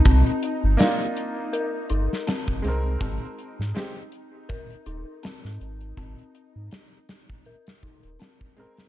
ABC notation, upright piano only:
X:1
M:4/4
L:1/8
Q:"Swing 16ths" 1/4=81
K:Ablyd
V:1 name="Upright piano"
z2 [B,DEF]3 z2 [A,CB]- | [A,CB]2 [A,CG] z4 z | z6 z [A,CB] |]